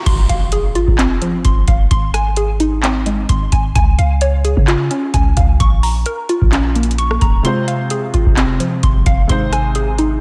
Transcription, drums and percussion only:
0.06 kick, closed hi-hat, crash
0.29 closed hi-hat
0.52 closed hi-hat
0.75 closed hi-hat
0.88 kick
0.99 clap, closed hi-hat
1.22 closed hi-hat
1.45 kick, closed hi-hat
1.68 kick, closed hi-hat
1.91 kick, closed hi-hat
2.14 cross-stick, closed hi-hat
2.36 closed hi-hat
2.60 closed hi-hat
2.83 clap, closed hi-hat
3.06 closed hi-hat
3.29 kick, closed hi-hat
3.52 kick, closed hi-hat
3.75 kick, closed hi-hat
3.99 closed hi-hat
4.21 closed hi-hat
4.45 closed hi-hat
4.57 kick
4.68 clap, closed hi-hat
4.91 closed hi-hat
5.14 kick, closed hi-hat
5.37 kick, closed hi-hat
5.60 kick, closed hi-hat
5.83 open hi-hat
6.06 closed hi-hat
6.29 closed hi-hat
6.42 kick
6.52 clap, closed hi-hat
6.75 closed hi-hat
6.83 closed hi-hat
6.91 closed hi-hat
6.98 closed hi-hat
7.11 cross-stick
7.21 kick, closed hi-hat
7.45 closed hi-hat
7.68 closed hi-hat
7.90 closed hi-hat
8.14 closed hi-hat
8.26 kick
8.37 clap, closed hi-hat
8.60 closed hi-hat
8.83 kick, closed hi-hat
9.06 kick, closed hi-hat
9.29 kick, closed hi-hat
9.53 cross-stick, closed hi-hat
9.75 closed hi-hat
9.98 closed hi-hat

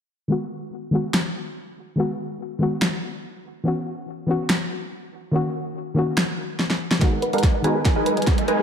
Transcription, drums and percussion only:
1.14 finger snap, snare
2.82 finger snap, snare
4.50 finger snap, snare
6.17 finger snap, snare
6.59 snare
6.70 snare
6.91 snare
7.01 kick, snare, closed hi-hat
7.22 closed hi-hat
7.33 closed hi-hat
7.38 closed hi-hat
7.43 kick, snare, closed hi-hat
7.64 closed hi-hat
7.85 kick, snare, closed hi-hat
8.06 closed hi-hat
8.17 closed hi-hat
8.22 closed hi-hat
8.27 kick, snare, closed hi-hat
8.38 closed hi-hat
8.48 closed hi-hat

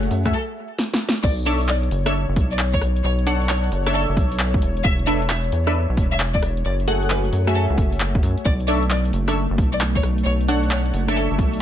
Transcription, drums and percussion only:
0.03 closed hi-hat, shaker
0.11 open hi-hat
0.26 kick, cross-stick, closed hi-hat, shaker
0.79 snare
0.94 snare
1.09 snare
1.24 kick, crash
1.38 closed hi-hat
1.46 open hi-hat
1.61 closed hi-hat
1.69 clap
1.83 closed hi-hat
1.91 open hi-hat
2.06 cross-stick, closed hi-hat
2.36 kick, open hi-hat
2.51 closed hi-hat
2.59 clap
2.74 kick
2.82 cross-stick, open hi-hat
2.96 closed hi-hat
3.19 closed hi-hat
3.27 open hi-hat
3.41 closed hi-hat
3.49 clap
3.64 closed hi-hat
3.72 open hi-hat
3.87 cross-stick, closed hi-hat
4.17 kick, open hi-hat
4.32 open hi-hat
4.39 clap
4.54 kick
4.62 open hi-hat
4.77 closed hi-hat
4.85 kick
4.99 closed hi-hat
5.07 open hi-hat
5.22 closed hi-hat
5.30 clap
5.45 closed hi-hat
5.52 open hi-hat
5.67 cross-stick, closed hi-hat
5.97 kick, open hi-hat
6.12 closed hi-hat
6.20 clap
6.35 kick
6.43 cross-stick, open hi-hat
6.57 closed hi-hat
6.80 closed hi-hat
6.88 open hi-hat
7.02 closed hi-hat
7.10 clap
7.25 closed hi-hat
7.33 open hi-hat
7.47 cross-stick, closed hi-hat
7.78 kick, open hi-hat
7.93 open hi-hat
8.00 clap
8.15 kick
8.23 open hi-hat
8.38 closed hi-hat
8.45 kick
8.60 closed hi-hat
8.68 open hi-hat
8.83 closed hi-hat
8.90 clap
9.05 closed hi-hat
9.13 open hi-hat
9.28 cross-stick, closed hi-hat
9.58 kick, open hi-hat
9.73 closed hi-hat
9.81 clap
9.95 kick
10.03 cross-stick, open hi-hat
10.18 closed hi-hat
10.41 closed hi-hat
10.48 open hi-hat
10.63 closed hi-hat
10.71 clap
10.86 closed hi-hat
10.94 open hi-hat
11.08 cross-stick, closed hi-hat
11.39 kick, open hi-hat
11.53 open hi-hat

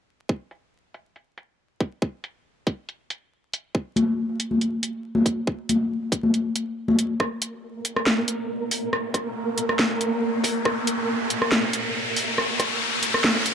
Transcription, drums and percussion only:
0.29 kick
0.51 closed hi-hat
0.94 closed hi-hat
1.16 closed hi-hat
1.38 closed hi-hat
1.80 kick, closed hi-hat
2.02 kick
2.24 closed hi-hat
2.67 kick, closed hi-hat
2.89 closed hi-hat
3.10 closed hi-hat
3.53 closed hi-hat
3.75 kick
3.96 closed hi-hat, high conga
4.40 closed hi-hat
4.51 high conga
4.61 closed hi-hat
4.83 closed hi-hat
5.15 high conga
5.26 kick, closed hi-hat
5.47 kick
5.69 closed hi-hat, high conga
6.12 kick, closed hi-hat
6.23 high conga
6.34 closed hi-hat
6.56 closed hi-hat
6.88 high conga
6.99 closed hi-hat
7.20 kick, cross-stick
7.42 closed hi-hat
7.85 closed hi-hat
7.96 cross-stick
8.07 snare, closed hi-hat
8.28 closed hi-hat
8.71 open hi-hat
8.93 cross-stick
9.14 kick, cross-stick, closed hi-hat
9.58 closed hi-hat
9.69 cross-stick
9.79 snare, closed hi-hat
10.01 closed hi-hat
10.44 kick, open hi-hat
10.65 kick, cross-stick
10.87 closed hi-hat
11.30 closed hi-hat
11.42 cross-stick
11.52 snare, closed hi-hat
11.73 closed hi-hat
12.16 open hi-hat
12.38 cross-stick
12.60 kick, cross-stick, closed hi-hat
13.03 closed hi-hat
13.14 cross-stick
13.24 snare, closed hi-hat
13.46 closed hi-hat

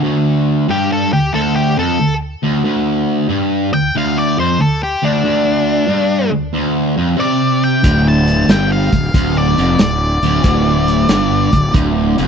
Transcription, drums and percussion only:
7.84 kick, closed hi-hat
8.28 closed hi-hat
8.49 snare, closed hi-hat
8.92 kick, closed hi-hat
9.14 kick, closed hi-hat
9.58 closed hi-hat
9.79 snare, closed hi-hat
10.23 closed hi-hat
10.44 kick, closed hi-hat
10.88 closed hi-hat
11.09 snare, closed hi-hat
11.53 kick, closed hi-hat
11.74 kick, closed hi-hat
12.18 closed hi-hat

